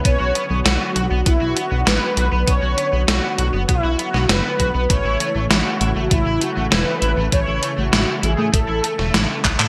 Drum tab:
HH |x-x-x-x-x-x-x-x-|x-x-x-x-x-x-x-x-|x-x-x-x-x-x-x-x-|x-x-x-x-x-x-x-x-|
CP |----------------|----------------|----------------|--------------xx|
SD |----o-------o---|----o------oo---|----o-------o---|----o------oo---|
BD |o-------o-------|o-------o-----o-|o-------o-------|o-------o-----o-|